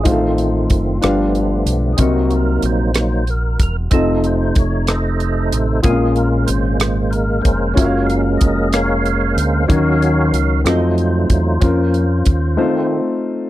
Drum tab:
HH |xxxxxx|xxxxxx|xxxxxx|xxxxxx|
SD |---r--|---r--|---r--|---r--|
BD |o-o---|o----o|o-o---|o----o|

HH |xxxxxx|xxxxxx|xxx---|
SD |---r--|---r--|------|
BD |o-o---|o----o|o-o---|